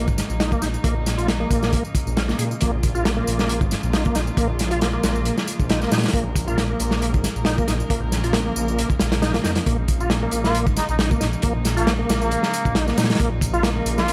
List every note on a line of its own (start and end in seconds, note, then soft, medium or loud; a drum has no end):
0.00 14.13 C#3 medium
0.00 14.13 F3 medium
0.00 14.13 G#3 medium
0.00 14.13 A#3 medium
0.00 2.60 D#4 medium
0.08 0.22 G#1 medium
0.08 kick medium
0.08 tambourine soft
0.18 snare soft
0.18 closed hi-hat medium
0.18 tambourine medium
0.30 0.56 A#1 loud
0.30 tambourine soft
0.40 0.51 D#4 loud
0.40 snare loud
0.40 closed hi-hat medium
0.40 tambourine soft
0.52 0.62 A#3 medium
0.52 kick medium
0.52 tambourine soft
0.62 0.77 A#1 medium
0.62 0.68 D#4 medium
0.62 snare soft
0.62 closed hi-hat medium
0.62 tambourine medium
0.74 tambourine soft
0.84 1.45 A#1 medium
0.84 0.94 A#3 medium
0.84 kick loud
0.84 closed hi-hat medium
0.84 tambourine soft
1.06 snare soft
1.06 closed hi-hat medium
1.06 tambourine medium
1.18 1.27 F4 medium
1.18 closed hi-hat soft
1.18 tambourine soft
1.28 1.34 A#3 medium
1.28 snare loud
1.28 closed hi-hat medium
1.28 tambourine soft
1.40 1.83 A#3 medium
1.50 1.78 A#1 medium
1.50 kick medium
1.50 closed hi-hat medium
1.50 tambourine medium
1.63 snare medium
1.63 tambourine soft
1.73 kick loud
1.73 closed hi-hat medium
1.73 tambourine soft
1.85 tambourine soft
1.95 kick loud
1.95 closed hi-hat medium
1.95 tambourine medium
2.06 2.33 A#1 medium
2.06 tambourine soft
2.16 2.23 C#4 medium
2.16 snare loud
2.16 closed hi-hat medium
2.16 tambourine soft
2.29 2.37 A#3 medium
2.29 snare soft
2.29 tambourine soft
2.39 2.54 A#2 medium
2.39 2.45 G#4 medium
2.39 closed hi-hat medium
2.39 tambourine medium
2.51 tambourine soft
2.61 3.22 A#1 loud
2.61 2.71 A#3 medium
2.61 6.13 F4 medium
2.61 kick loud
2.61 closed hi-hat medium
2.61 tambourine soft
2.83 kick medium
2.83 closed hi-hat medium
2.83 tambourine medium
2.95 3.04 F4 medium
2.95 tambourine soft
3.05 3.11 A#3 medium
3.05 snare loud
3.05 closed hi-hat medium
3.05 tambourine soft
3.17 3.60 A#3 medium
3.27 3.62 A#1 medium
3.27 closed hi-hat medium
3.27 tambourine medium
3.39 snare medium
3.39 tambourine soft
3.49 closed hi-hat medium
3.49 tambourine soft
3.61 3.75 G#1 medium
3.61 kick medium
3.61 tambourine soft
3.71 snare soft
3.71 closed hi-hat medium
3.71 tambourine medium
3.83 4.10 A#1 medium
3.83 tambourine soft
3.93 4.04 D#4 medium
3.93 snare loud
3.93 closed hi-hat medium
3.93 tambourine soft
4.05 4.15 A#3 medium
4.05 kick loud
4.05 tambourine soft
4.15 4.30 A#1 medium
4.15 4.21 D#4 loud
4.15 snare soft
4.15 closed hi-hat medium
4.15 tambourine medium
4.27 tambourine soft
4.37 4.98 A#1 loud
4.37 4.48 A#3 loud
4.37 kick loud
4.37 closed hi-hat medium
4.37 tambourine soft
4.59 snare soft
4.59 closed hi-hat medium
4.59 tambourine medium
4.71 4.80 F4 loud
4.71 closed hi-hat soft
4.71 tambourine soft
4.81 4.88 A#3 medium
4.81 snare loud
4.81 closed hi-hat medium
4.81 tambourine soft
4.93 5.36 A#3 medium
5.03 5.31 A#1 medium
5.03 snare medium
5.03 closed hi-hat medium
5.03 tambourine medium
5.15 tambourine soft
5.25 closed hi-hat medium
5.25 tambourine soft
5.37 snare soft
5.37 tambourine soft
5.48 closed hi-hat medium
5.48 tambourine medium
5.59 5.86 A#1 medium
5.59 kick medium
5.59 tambourine soft
5.69 5.80 D#4 medium
5.69 snare loud
5.69 closed hi-hat medium
5.69 tambourine soft
5.82 5.91 A#3 medium
5.82 snare soft
5.82 tambourine soft
5.91 6.06 A#2 medium
5.91 5.98 D#4 loud
5.91 snare medium
5.91 closed hi-hat medium
5.91 tambourine medium
5.98 snare medium
5.98 closed hi-hat medium
6.03 snare medium
6.03 closed hi-hat medium
6.03 tambourine soft
6.08 snare medium
6.08 closed hi-hat medium
6.14 6.74 A#1 loud
6.14 6.24 A#3 loud
6.14 9.66 A#4 medium
6.14 kick loud
6.14 closed hi-hat medium
6.14 tambourine soft
6.36 kick medium
6.36 closed hi-hat medium
6.36 tambourine medium
6.48 6.57 F4 loud
6.48 tambourine soft
6.57 6.64 A#3 medium
6.57 snare loud
6.57 closed hi-hat medium
6.57 tambourine soft
6.70 7.13 A#3 medium
6.80 7.16 A#1 loud
6.80 closed hi-hat medium
6.80 tambourine medium
6.91 snare medium
6.91 tambourine soft
7.02 closed hi-hat medium
7.02 tambourine soft
7.14 7.28 G#1 medium
7.14 kick loud
7.14 tambourine soft
7.24 snare soft
7.24 closed hi-hat medium
7.24 tambourine medium
7.36 7.62 A#1 loud
7.36 tambourine soft
7.45 7.57 D#4 loud
7.45 snare loud
7.45 closed hi-hat medium
7.45 tambourine soft
7.58 7.68 A#3 medium
7.58 kick medium
7.58 tambourine soft
7.68 7.83 A#1 medium
7.68 7.74 D#4 loud
7.68 snare soft
7.68 closed hi-hat medium
7.68 tambourine medium
7.80 tambourine soft
7.90 8.51 A#1 medium
7.90 8.00 A#3 medium
7.90 kick loud
7.90 closed hi-hat medium
7.90 tambourine soft
8.12 snare soft
8.12 closed hi-hat medium
8.12 tambourine medium
8.24 8.33 F4 medium
8.24 closed hi-hat soft
8.24 tambourine soft
8.33 8.40 A#3 medium
8.33 snare loud
8.33 closed hi-hat medium
8.33 tambourine soft
8.45 8.89 A#3 medium
8.56 8.84 A#1 loud
8.56 tambourine medium
8.68 tambourine soft
8.78 closed hi-hat medium
8.78 tambourine soft
8.78 swell medium
8.90 kick medium
8.90 tambourine soft
8.99 9.39 A#1 medium
8.99 snare medium
8.99 closed hi-hat medium
8.99 tambourine medium
9.12 snare medium
9.12 closed hi-hat medium
9.12 tambourine soft
9.22 9.33 D#4 medium
9.22 snare medium
9.22 closed hi-hat medium
9.22 tambourine soft
9.34 9.44 A#3 medium
9.34 snare loud
9.34 closed hi-hat medium
9.34 tambourine soft
9.44 9.59 F2 loud
9.44 9.51 D#4 loud
9.44 snare loud
9.44 closed hi-hat medium
9.44 tambourine medium
9.55 snare medium
9.55 closed hi-hat medium
9.55 tambourine soft
9.66 10.27 A#1 loud
9.66 9.77 A#3 loud
9.66 14.13 D#4 medium
9.66 kick loud
9.66 closed hi-hat medium
9.66 tambourine soft
9.88 kick medium
9.88 closed hi-hat medium
9.88 tambourine medium
10.00 10.10 F4 medium
10.00 tambourine soft
10.10 10.17 A#3 medium
10.10 snare loud
10.10 closed hi-hat medium
10.10 tambourine soft
10.23 10.66 A#3 medium
10.31 10.68 A#1 loud
10.31 closed hi-hat medium
10.31 tambourine medium
10.44 10.59 F4 medium
10.44 snare medium
10.44 tambourine soft
10.55 closed hi-hat medium
10.55 tambourine soft
10.67 10.80 G#1 medium
10.67 kick medium
10.67 tambourine soft
10.76 10.85 D#4 medium
10.76 snare soft
10.76 closed hi-hat medium
10.76 tambourine medium
10.89 11.15 A#1 loud
10.89 10.96 D#4 medium
10.89 tambourine soft
10.99 11.10 D#4 medium
10.99 snare loud
10.99 closed hi-hat medium
10.99 tambourine soft
11.11 11.21 A#3 medium
11.11 kick loud
11.11 tambourine soft
11.21 11.36 A#1 medium
11.21 11.27 D#4 loud
11.21 snare soft
11.21 closed hi-hat medium
11.21 tambourine medium
11.33 tambourine soft
11.42 12.04 A#1 loud
11.42 11.53 A#3 medium
11.42 kick loud
11.42 closed hi-hat medium
11.42 tambourine soft
11.65 snare soft
11.65 closed hi-hat medium
11.65 tambourine medium
11.77 11.91 A#3 medium
11.77 11.86 F4 medium
11.77 closed hi-hat soft
11.77 tambourine soft
11.87 11.93 A#3 medium
11.87 snare loud
11.87 closed hi-hat medium
11.87 tambourine soft
11.99 12.42 A#3 medium
12.09 12.37 A#1 loud
12.09 snare loud
12.09 closed hi-hat medium
12.09 tambourine medium
12.21 12.83 A#3 medium
12.21 tambourine soft
12.31 closed hi-hat medium
12.31 tambourine soft
12.43 snare medium
12.43 tambourine soft
12.54 closed hi-hat medium
12.54 tambourine medium
12.65 12.92 A#1 medium
12.65 kick medium
12.65 tambourine soft
12.75 12.86 D#4 loud
12.75 snare loud
12.75 closed hi-hat medium
12.75 tambourine soft
12.87 12.97 A#3 medium
12.87 snare soft
12.87 tambourine soft
12.98 13.12 A#2 medium
12.98 13.04 D#4 loud
12.98 snare medium
12.98 closed hi-hat medium
12.98 tambourine medium
13.03 snare medium
13.03 closed hi-hat medium
13.10 snare medium
13.10 closed hi-hat medium
13.10 tambourine soft
13.15 snare medium
13.15 closed hi-hat medium
13.19 13.80 A#1 loud
13.19 13.30 A#3 medium
13.19 kick loud
13.19 closed hi-hat medium
13.19 tambourine soft
13.41 kick medium
13.41 closed hi-hat medium
13.41 tambourine medium
13.54 13.63 F4 loud
13.54 tambourine soft
13.63 13.70 A#3 medium
13.63 snare loud
13.63 closed hi-hat medium
13.63 tambourine soft
13.76 14.13 A#3 medium
13.85 14.13 A#1 loud
13.85 closed hi-hat medium
13.85 tambourine medium
13.98 14.12 F4 medium
13.98 snare medium
13.98 tambourine soft
14.08 closed hi-hat medium
14.08 tambourine soft